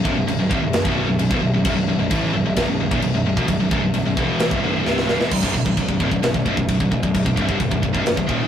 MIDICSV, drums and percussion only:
0, 0, Header, 1, 2, 480
1, 0, Start_track
1, 0, Tempo, 457666
1, 1731, Time_signature, 4, 2, 24, 8
1, 8890, End_track
2, 0, Start_track
2, 0, Title_t, "Drums"
2, 54, Note_on_c, 9, 36, 104
2, 159, Note_off_c, 9, 36, 0
2, 296, Note_on_c, 9, 49, 58
2, 401, Note_off_c, 9, 49, 0
2, 534, Note_on_c, 9, 36, 94
2, 639, Note_off_c, 9, 36, 0
2, 768, Note_on_c, 9, 49, 57
2, 777, Note_on_c, 9, 38, 100
2, 873, Note_off_c, 9, 49, 0
2, 882, Note_off_c, 9, 38, 0
2, 893, Note_on_c, 9, 36, 90
2, 997, Note_off_c, 9, 36, 0
2, 1250, Note_on_c, 9, 49, 58
2, 1355, Note_off_c, 9, 49, 0
2, 1371, Note_on_c, 9, 36, 110
2, 1476, Note_off_c, 9, 36, 0
2, 1727, Note_on_c, 9, 49, 67
2, 1731, Note_on_c, 9, 36, 121
2, 1831, Note_off_c, 9, 49, 0
2, 1836, Note_off_c, 9, 36, 0
2, 2209, Note_on_c, 9, 49, 65
2, 2213, Note_on_c, 9, 36, 106
2, 2314, Note_off_c, 9, 49, 0
2, 2318, Note_off_c, 9, 36, 0
2, 2689, Note_on_c, 9, 49, 62
2, 2695, Note_on_c, 9, 36, 91
2, 2699, Note_on_c, 9, 38, 87
2, 2794, Note_off_c, 9, 49, 0
2, 2800, Note_off_c, 9, 36, 0
2, 2804, Note_off_c, 9, 38, 0
2, 3056, Note_on_c, 9, 36, 104
2, 3161, Note_off_c, 9, 36, 0
2, 3171, Note_on_c, 9, 49, 61
2, 3276, Note_off_c, 9, 49, 0
2, 3535, Note_on_c, 9, 36, 106
2, 3640, Note_off_c, 9, 36, 0
2, 3649, Note_on_c, 9, 49, 61
2, 3655, Note_on_c, 9, 36, 98
2, 3754, Note_off_c, 9, 49, 0
2, 3759, Note_off_c, 9, 36, 0
2, 3894, Note_on_c, 9, 36, 101
2, 3999, Note_off_c, 9, 36, 0
2, 4129, Note_on_c, 9, 49, 53
2, 4234, Note_off_c, 9, 49, 0
2, 4374, Note_on_c, 9, 36, 97
2, 4479, Note_off_c, 9, 36, 0
2, 4610, Note_on_c, 9, 49, 52
2, 4620, Note_on_c, 9, 38, 98
2, 4715, Note_off_c, 9, 49, 0
2, 4725, Note_off_c, 9, 38, 0
2, 4734, Note_on_c, 9, 36, 92
2, 4839, Note_off_c, 9, 36, 0
2, 5102, Note_on_c, 9, 38, 66
2, 5207, Note_off_c, 9, 38, 0
2, 5224, Note_on_c, 9, 38, 73
2, 5329, Note_off_c, 9, 38, 0
2, 5341, Note_on_c, 9, 38, 86
2, 5446, Note_off_c, 9, 38, 0
2, 5462, Note_on_c, 9, 38, 79
2, 5567, Note_off_c, 9, 38, 0
2, 5574, Note_on_c, 9, 36, 102
2, 5574, Note_on_c, 9, 52, 62
2, 5574, Note_on_c, 9, 57, 126
2, 5679, Note_off_c, 9, 36, 0
2, 5679, Note_off_c, 9, 52, 0
2, 5679, Note_off_c, 9, 57, 0
2, 5694, Note_on_c, 9, 36, 94
2, 5799, Note_off_c, 9, 36, 0
2, 5814, Note_on_c, 9, 36, 78
2, 5919, Note_off_c, 9, 36, 0
2, 5934, Note_on_c, 9, 36, 83
2, 6039, Note_off_c, 9, 36, 0
2, 6053, Note_on_c, 9, 52, 66
2, 6054, Note_on_c, 9, 36, 86
2, 6158, Note_off_c, 9, 52, 0
2, 6159, Note_off_c, 9, 36, 0
2, 6173, Note_on_c, 9, 36, 78
2, 6278, Note_off_c, 9, 36, 0
2, 6294, Note_on_c, 9, 36, 83
2, 6399, Note_off_c, 9, 36, 0
2, 6414, Note_on_c, 9, 36, 76
2, 6519, Note_off_c, 9, 36, 0
2, 6534, Note_on_c, 9, 52, 58
2, 6543, Note_on_c, 9, 38, 102
2, 6639, Note_off_c, 9, 52, 0
2, 6648, Note_off_c, 9, 38, 0
2, 6653, Note_on_c, 9, 36, 87
2, 6758, Note_off_c, 9, 36, 0
2, 6774, Note_on_c, 9, 36, 78
2, 6878, Note_off_c, 9, 36, 0
2, 6893, Note_on_c, 9, 36, 84
2, 6998, Note_off_c, 9, 36, 0
2, 7011, Note_on_c, 9, 52, 62
2, 7013, Note_on_c, 9, 36, 91
2, 7116, Note_off_c, 9, 52, 0
2, 7118, Note_off_c, 9, 36, 0
2, 7135, Note_on_c, 9, 36, 87
2, 7240, Note_off_c, 9, 36, 0
2, 7255, Note_on_c, 9, 36, 75
2, 7360, Note_off_c, 9, 36, 0
2, 7376, Note_on_c, 9, 36, 90
2, 7481, Note_off_c, 9, 36, 0
2, 7495, Note_on_c, 9, 36, 95
2, 7498, Note_on_c, 9, 52, 67
2, 7600, Note_off_c, 9, 36, 0
2, 7603, Note_off_c, 9, 52, 0
2, 7615, Note_on_c, 9, 36, 91
2, 7720, Note_off_c, 9, 36, 0
2, 7734, Note_on_c, 9, 36, 87
2, 7839, Note_off_c, 9, 36, 0
2, 7852, Note_on_c, 9, 36, 86
2, 7957, Note_off_c, 9, 36, 0
2, 7970, Note_on_c, 9, 52, 54
2, 7972, Note_on_c, 9, 36, 86
2, 8075, Note_off_c, 9, 52, 0
2, 8077, Note_off_c, 9, 36, 0
2, 8091, Note_on_c, 9, 36, 83
2, 8196, Note_off_c, 9, 36, 0
2, 8213, Note_on_c, 9, 36, 86
2, 8317, Note_off_c, 9, 36, 0
2, 8333, Note_on_c, 9, 36, 76
2, 8438, Note_off_c, 9, 36, 0
2, 8453, Note_on_c, 9, 52, 56
2, 8463, Note_on_c, 9, 38, 106
2, 8558, Note_off_c, 9, 52, 0
2, 8568, Note_off_c, 9, 38, 0
2, 8572, Note_on_c, 9, 36, 92
2, 8677, Note_off_c, 9, 36, 0
2, 8694, Note_on_c, 9, 36, 86
2, 8799, Note_off_c, 9, 36, 0
2, 8890, End_track
0, 0, End_of_file